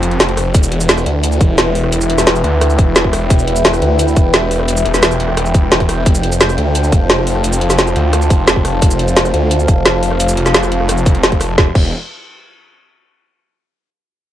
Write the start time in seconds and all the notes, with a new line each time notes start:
Already playing: F1 F4 C5 G5 A5
0.03 closed hi-hat, shaker
0.11 closed hi-hat
0.20 snare, closed hi-hat, shaker
0.29 closed hi-hat
0.37 cross-stick, open hi-hat, shaker
0.54 E1 E4 B4 E5 G5, kick, closed hi-hat, shaker
0.63 shaker
0.72 E1, closed hi-hat
0.80 closed hi-hat, shaker
0.89 snare, closed hi-hat, shaker
0.98 cross-stick, shaker
1.06 D2, closed hi-hat
1.23 closed hi-hat, shaker
1.32 shaker
1.41 E1, kick, closed hi-hat, shaker
1.58 snare, closed hi-hat, shaker
1.75 open hi-hat
1.84 cross-stick
1.92 E1, closed hi-hat, shaker
2.01 shaker
2.10 E1, closed hi-hat
2.18 snare, closed hi-hat, shaker
2.27 snare, closed hi-hat, shaker
2.36 shaker
2.44 D2, closed hi-hat
2.61 cross-stick, closed hi-hat, shaker
2.70 shaker
2.79 E1, kick, closed hi-hat, shaker
2.96 snare, closed hi-hat, shaker
3.04 kick
3.13 cross-stick, open hi-hat
3.30 E1, kick, closed hi-hat, shaker
3.39 shaker
3.48 E1, closed hi-hat
3.56 closed hi-hat, shaker
3.65 snare, closed hi-hat, shaker
3.73 cross-stick, shaker
3.82 D2, closed hi-hat
3.99 closed hi-hat, shaker
4.08 shaker
4.16 E1, kick, closed hi-hat, shaker
4.34 snare, closed hi-hat, shaker
4.51 open hi-hat
4.60 cross-stick
4.68 E1, closed hi-hat, shaker
4.77 shaker
4.86 E1, closed hi-hat
4.94 snare, closed hi-hat, shaker
5.03 snare, closed hi-hat, shaker
5.11 shaker
5.20 E1, closed hi-hat
5.29 cross-stick
5.37 E1, cross-stick, closed hi-hat, shaker
5.46 shaker
5.54 kick, closed hi-hat, shaker
5.72 snare, closed hi-hat, shaker
5.80 kick, closed hi-hat
5.89 E1, cross-stick, open hi-hat
6.06 F1 F4 C5 A5, kick, closed hi-hat, shaker
6.15 shaker
6.23 F1, closed hi-hat
6.32 closed hi-hat, shaker
6.41 snare, closed hi-hat, shaker
6.49 cross-stick, shaker
6.58 D2, closed hi-hat
6.75 closed hi-hat, shaker
6.84 shaker
6.92 F1, kick, closed hi-hat, shaker
7.10 snare, closed hi-hat, shaker
7.27 open hi-hat
7.35 cross-stick
7.44 F1, closed hi-hat, shaker
7.53 shaker
7.61 F1, closed hi-hat
7.70 snare, closed hi-hat, shaker
7.79 snare, closed hi-hat, shaker
7.87 shaker
7.96 D2, closed hi-hat
8.13 cross-stick, closed hi-hat, shaker
8.22 shaker
8.30 F1, kick, closed hi-hat, shaker
8.48 snare, closed hi-hat, shaker
8.56 kick
8.65 cross-stick, open hi-hat
8.82 F1 F5, kick, closed hi-hat, shaker
8.91 shaker
8.99 F1, closed hi-hat
9.08 closed hi-hat, shaker
9.17 snare, closed hi-hat, shaker
9.25 cross-stick, shaker
9.34 D2, closed hi-hat
9.51 closed hi-hat, shaker
9.60 shaker
9.68 F1, kick, closed hi-hat, shaker
9.86 snare, closed hi-hat, shaker
10.03 open hi-hat
10.11 cross-stick
10.20 F1, closed hi-hat, shaker
10.29 shaker
10.37 F1, closed hi-hat
10.46 snare, closed hi-hat, shaker
10.54 snare, closed hi-hat, shaker
10.63 cross-stick, shaker
10.72 F1, closed hi-hat
10.80 cross-stick
10.89 cross-stick, closed hi-hat, shaker
10.98 shaker
11.06 kick, closed hi-hat, shaker
11.15 closed hi-hat
11.23 snare, closed hi-hat, shaker
11.32 kick, closed hi-hat
11.41 cross-stick, open hi-hat, shaker
11.58 E1, kick, snare
11.75 E1, kick, crash